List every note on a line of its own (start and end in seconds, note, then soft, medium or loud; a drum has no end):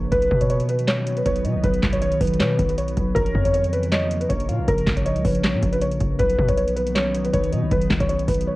0.00 0.11 A#1 loud
0.12 0.30 B1 loud
0.12 3.13 D#3 medium
0.12 3.13 F#3 medium
0.12 3.13 B3 medium
0.12 0.39 B4 loud
0.12 0.84 B4 loud
0.12 kick loud
0.12 closed hi-hat medium
0.22 closed hi-hat medium
0.31 1.22 B2 loud
0.31 kick loud
0.41 0.48 C#5 medium
0.41 kick medium
0.41 closed hi-hat medium
0.50 0.67 C#5 medium
0.50 closed hi-hat medium
0.60 closed hi-hat medium
0.69 0.86 B4 medium
0.69 closed hi-hat medium
0.79 closed hi-hat medium
0.87 1.15 C#5 medium
0.87 1.24 C#5 medium
0.87 snare loud
0.87 clap medium
0.87 closed hi-hat medium
1.07 closed hi-hat medium
1.17 1.25 B4 medium
1.17 closed hi-hat medium
1.26 1.46 B1 loud
1.26 1.44 B4 medium
1.26 1.62 C#5 medium
1.26 kick medium
1.26 closed hi-hat medium
1.36 closed hi-hat medium
1.45 1.56 B2 loud
1.45 1.63 D#5 medium
1.45 closed hi-hat medium
1.55 1.63 B1 medium
1.64 1.82 B1 loud
1.64 1.91 B4 loud
1.64 kick loud
1.64 closed hi-hat medium
1.74 closed hi-hat medium
1.83 2.19 B1 loud
1.83 kick loud
1.83 snare loud
1.83 clap medium
1.93 2.00 C#5 medium
1.93 kick medium
1.93 closed hi-hat medium
2.02 2.20 C#5 medium
2.02 2.18 C#5 loud
2.02 closed hi-hat medium
2.12 closed hi-hat medium
2.21 2.41 B1 loud
2.21 3.12 B4 medium
2.21 2.37 B4 medium
2.21 kick medium
2.21 closed hi-hat medium
2.21 open hi-hat medium
2.27 closed hi-hat medium
2.34 closed hi-hat medium
2.40 2.58 B2 loud
2.40 2.67 C#5 medium
2.40 snare loud
2.40 clap medium
2.40 closed hi-hat medium
2.59 2.95 B1 loud
2.59 kick loud
2.59 closed hi-hat medium
2.69 2.77 B4 medium
2.69 closed hi-hat medium
2.78 3.14 C#5 medium
2.78 closed hi-hat medium
2.88 closed hi-hat medium
2.97 3.15 B1 loud
2.97 kick loud
2.97 closed hi-hat medium
3.15 3.34 A#1 loud
3.15 6.17 C#3 medium
3.15 6.16 F3 medium
3.15 6.17 A#3 medium
3.15 3.43 A#4 loud
3.15 3.88 C#5 loud
3.15 kick loud
3.15 closed hi-hat medium
3.26 closed hi-hat medium
3.35 4.26 F2 loud
3.35 kick loud
3.45 3.52 C#5 medium
3.45 kick medium
3.45 closed hi-hat medium
3.53 3.70 C#5 medium
3.53 closed hi-hat medium
3.64 closed hi-hat medium
3.73 3.89 B4 medium
3.73 closed hi-hat medium
3.83 closed hi-hat medium
3.92 4.19 C#5 medium
3.92 4.27 D#5 loud
3.92 snare loud
3.92 clap medium
3.92 closed hi-hat medium
4.11 closed hi-hat medium
4.21 4.29 B4 medium
4.21 closed hi-hat medium
4.29 4.50 A#1 loud
4.29 4.65 C#5 medium
4.29 4.48 C#5 medium
4.29 kick medium
4.29 closed hi-hat medium
4.40 closed hi-hat medium
4.49 4.60 A#2 loud
4.49 4.67 F5 medium
4.49 closed hi-hat medium
4.59 4.67 A#1 medium
4.68 4.86 A#1 loud
4.68 4.95 A#4 loud
4.68 kick loud
4.68 closed hi-hat medium
4.78 closed hi-hat medium
4.87 5.17 A#1 loud
4.87 kick loud
4.87 snare loud
4.87 clap medium
4.96 5.04 C#5 medium
4.96 kick medium
4.96 closed hi-hat medium
5.05 5.22 C#5 medium
5.05 5.24 D#5 medium
5.05 closed hi-hat medium
5.16 5.24 C#2 loud
5.16 closed hi-hat medium
5.24 5.55 A#1 loud
5.24 5.41 B4 medium
5.24 5.78 C#5 medium
5.24 kick loud
5.24 open hi-hat medium
5.35 closed hi-hat medium
5.44 5.71 C#5 medium
5.44 snare loud
5.44 clap medium
5.44 closed hi-hat medium
5.54 5.62 A#2 loud
5.63 5.99 A#1 loud
5.63 kick loud
5.63 closed hi-hat medium
5.72 5.80 B4 medium
5.72 closed hi-hat medium
5.81 6.17 C#5 medium
5.81 closed hi-hat medium
5.92 closed hi-hat medium
6.01 6.19 A#1 loud
6.01 kick loud
6.01 closed hi-hat medium
6.19 6.38 B1 loud
6.19 8.56 D#3 medium
6.19 8.56 F#3 medium
6.19 8.56 B3 medium
6.19 6.47 B4 loud
6.19 6.91 B4 loud
6.19 kick loud
6.19 closed hi-hat medium
6.30 closed hi-hat medium
6.39 6.48 B2 loud
6.39 kick loud
6.48 7.30 B1 loud
6.48 6.56 C#5 medium
6.48 kick medium
6.48 closed hi-hat medium
6.57 6.74 C#5 medium
6.57 closed hi-hat medium
6.68 closed hi-hat medium
6.76 6.93 B4 medium
6.76 closed hi-hat medium
6.87 closed hi-hat medium
6.95 7.23 C#5 medium
6.95 7.31 C#5 medium
6.95 snare loud
6.95 clap medium
6.95 closed hi-hat medium
7.15 closed hi-hat medium
7.24 7.32 B4 medium
7.24 closed hi-hat medium
7.33 7.54 B1 loud
7.33 7.52 B4 medium
7.33 7.69 C#5 medium
7.33 kick medium
7.33 closed hi-hat medium
7.44 closed hi-hat medium
7.52 7.64 B2 loud
7.52 7.70 D#5 medium
7.52 closed hi-hat medium
7.62 7.71 B1 medium
7.71 7.90 B1 loud
7.71 7.99 B4 medium
7.71 kick loud
7.71 closed hi-hat medium
7.82 closed hi-hat medium
7.90 8.00 B1 loud
7.90 kick loud
7.90 snare loud
7.90 clap medium
8.00 8.27 B1 loud
8.00 8.08 C#5 medium
8.00 kick medium
8.00 closed hi-hat medium
8.09 8.26 C#5 medium
8.09 8.27 C#5 medium
8.09 closed hi-hat medium
8.20 closed hi-hat medium
8.28 8.47 B1 loud
8.28 8.45 B4 medium
8.28 8.56 B4 medium
8.28 kick medium
8.28 closed hi-hat medium
8.28 open hi-hat medium
8.35 closed hi-hat medium
8.41 closed hi-hat medium
8.48 8.56 C#5 medium